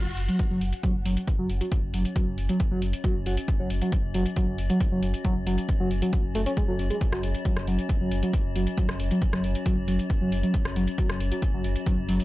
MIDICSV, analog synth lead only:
0, 0, Header, 1, 2, 480
1, 0, Start_track
1, 0, Tempo, 441176
1, 1868, Time_signature, 4, 2, 24, 8
1, 13323, End_track
2, 0, Start_track
2, 0, Title_t, "Analog synth lead"
2, 0, Program_c, 0, 81
2, 310, Note_on_c, 0, 54, 78
2, 406, Note_off_c, 0, 54, 0
2, 551, Note_on_c, 0, 54, 74
2, 646, Note_off_c, 0, 54, 0
2, 908, Note_on_c, 0, 54, 83
2, 1008, Note_off_c, 0, 54, 0
2, 1147, Note_on_c, 0, 54, 82
2, 1247, Note_off_c, 0, 54, 0
2, 1508, Note_on_c, 0, 54, 75
2, 1605, Note_off_c, 0, 54, 0
2, 1750, Note_on_c, 0, 54, 75
2, 1846, Note_off_c, 0, 54, 0
2, 2108, Note_on_c, 0, 54, 77
2, 2208, Note_off_c, 0, 54, 0
2, 2348, Note_on_c, 0, 54, 76
2, 2448, Note_off_c, 0, 54, 0
2, 2712, Note_on_c, 0, 54, 78
2, 2807, Note_off_c, 0, 54, 0
2, 2951, Note_on_c, 0, 54, 80
2, 3047, Note_off_c, 0, 54, 0
2, 3309, Note_on_c, 0, 54, 82
2, 3408, Note_off_c, 0, 54, 0
2, 3550, Note_on_c, 0, 54, 80
2, 3649, Note_off_c, 0, 54, 0
2, 3911, Note_on_c, 0, 54, 80
2, 4007, Note_off_c, 0, 54, 0
2, 4152, Note_on_c, 0, 54, 78
2, 4247, Note_off_c, 0, 54, 0
2, 4508, Note_on_c, 0, 54, 80
2, 4608, Note_off_c, 0, 54, 0
2, 4748, Note_on_c, 0, 54, 82
2, 4848, Note_off_c, 0, 54, 0
2, 5111, Note_on_c, 0, 54, 76
2, 5207, Note_off_c, 0, 54, 0
2, 5351, Note_on_c, 0, 54, 77
2, 5446, Note_off_c, 0, 54, 0
2, 5709, Note_on_c, 0, 54, 85
2, 5808, Note_off_c, 0, 54, 0
2, 5948, Note_on_c, 0, 54, 75
2, 6048, Note_off_c, 0, 54, 0
2, 6311, Note_on_c, 0, 54, 77
2, 6406, Note_off_c, 0, 54, 0
2, 6550, Note_on_c, 0, 54, 76
2, 6646, Note_off_c, 0, 54, 0
2, 6907, Note_on_c, 0, 57, 106
2, 6974, Note_off_c, 0, 57, 0
2, 7030, Note_on_c, 0, 61, 99
2, 7094, Note_off_c, 0, 61, 0
2, 7147, Note_on_c, 0, 56, 85
2, 7214, Note_off_c, 0, 56, 0
2, 7269, Note_on_c, 0, 54, 101
2, 7308, Note_off_c, 0, 54, 0
2, 7510, Note_on_c, 0, 56, 75
2, 7574, Note_off_c, 0, 56, 0
2, 7750, Note_on_c, 0, 54, 76
2, 7846, Note_off_c, 0, 54, 0
2, 8108, Note_on_c, 0, 54, 77
2, 8208, Note_off_c, 0, 54, 0
2, 8350, Note_on_c, 0, 54, 77
2, 8449, Note_off_c, 0, 54, 0
2, 8712, Note_on_c, 0, 54, 81
2, 8807, Note_off_c, 0, 54, 0
2, 8952, Note_on_c, 0, 54, 78
2, 9047, Note_off_c, 0, 54, 0
2, 9309, Note_on_c, 0, 54, 76
2, 9408, Note_off_c, 0, 54, 0
2, 9549, Note_on_c, 0, 54, 84
2, 9649, Note_off_c, 0, 54, 0
2, 9912, Note_on_c, 0, 54, 77
2, 10007, Note_off_c, 0, 54, 0
2, 10151, Note_on_c, 0, 54, 77
2, 10246, Note_off_c, 0, 54, 0
2, 10509, Note_on_c, 0, 54, 82
2, 10608, Note_off_c, 0, 54, 0
2, 10748, Note_on_c, 0, 54, 76
2, 10848, Note_off_c, 0, 54, 0
2, 11111, Note_on_c, 0, 54, 78
2, 11207, Note_off_c, 0, 54, 0
2, 11350, Note_on_c, 0, 54, 74
2, 11446, Note_off_c, 0, 54, 0
2, 11708, Note_on_c, 0, 54, 75
2, 11808, Note_off_c, 0, 54, 0
2, 11948, Note_on_c, 0, 54, 79
2, 12048, Note_off_c, 0, 54, 0
2, 12310, Note_on_c, 0, 54, 77
2, 12406, Note_off_c, 0, 54, 0
2, 12551, Note_on_c, 0, 54, 79
2, 12646, Note_off_c, 0, 54, 0
2, 12907, Note_on_c, 0, 54, 82
2, 13008, Note_off_c, 0, 54, 0
2, 13149, Note_on_c, 0, 54, 77
2, 13248, Note_off_c, 0, 54, 0
2, 13323, End_track
0, 0, End_of_file